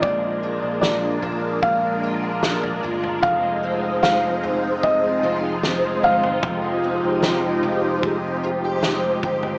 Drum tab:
SD |----o-------o---|----o-------o---|----o-------o---|
FT |o-----o------ooo|o-----o-------oo|o-----o-------oo|
BD |o-------o-------|o-------o-------|o-------o-----o-|